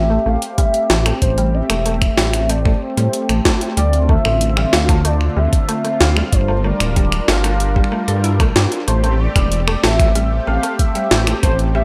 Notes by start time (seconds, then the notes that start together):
Already playing: A1 A3 C4 G4 E5
0.10 A3
0.26 A1 A3 F5
0.42 closed hi-hat
0.58 G3 E5, kick, closed hi-hat
0.74 closed hi-hat
0.90 A1 A3, snare
1.06 A3, finger snap, closed hi-hat
1.22 A1 C5, kick, closed hi-hat
1.38 G3, closed hi-hat
1.54 E5
1.70 E1 A3, finger snap, closed hi-hat
1.86 A3, closed hi-hat
2.02 finger snap, kick, closed hi-hat
2.18 A1 G3, snare
2.33 finger snap, closed hi-hat
2.49 A3 D5, closed hi-hat
2.65 A3, finger snap, kick
2.82 C5
2.97 A2 G3, closed hi-hat
3.13 closed hi-hat
3.29 A1 A3, finger snap, closed hi-hat
3.45 A3, kick, snare
3.61 closed hi-hat
3.77 D2 D3 G3 F4 D5, closed hi-hat
3.93 closed hi-hat
4.09 A3 E5, kick
4.25 A1 A3, finger snap
4.41 closed hi-hat
4.57 G3, finger snap
4.73 D2 F5, snare
4.89 A3, finger snap, kick, closed hi-hat
5.05 A3 D5, closed hi-hat
5.21 finger snap
5.37 D2 G3 E5
5.53 kick, closed hi-hat
5.69 A3, closed hi-hat
5.84 A3, closed hi-hat
6.00 D2 F5, snare
6.16 G3, finger snap
6.32 G1 G3 D4 A#4 C5, kick, closed hi-hat
6.48 A3
6.64 A3 D5
6.80 D1, finger snap, closed hi-hat
6.96 G3, kick, closed hi-hat
7.12 finger snap, closed hi-hat
7.28 G1 A3 F5, snare
7.44 A3, finger snap, closed hi-hat
7.60 closed hi-hat
7.76 G3, kick
7.84 finger snap
7.92 A3
8.08 G2 A4, closed hi-hat
8.24 E4, closed hi-hat
8.40 A#1 A3, finger snap, kick, closed hi-hat
8.56 G2 D4, snare
8.72 closed hi-hat
8.88 A1 A3 C4 G4 C5, closed hi-hat
9.04 A3, closed hi-hat
9.20 D5
9.36 E1 G3, finger snap, kick, closed hi-hat
9.52 closed hi-hat
9.68 A3, finger snap
9.83 A1 A3 E5, snare
9.99 finger snap, kick, closed hi-hat
10.15 G3, closed hi-hat
10.47 A1 A3 F5
10.63 A3, closed hi-hat
10.79 E5, kick, closed hi-hat
10.95 G3, closed hi-hat
11.11 A1, snare
11.27 A3, finger snap, closed hi-hat
11.43 A1 A3 C5, kick, closed hi-hat
11.59 closed hi-hat
11.75 G3 E5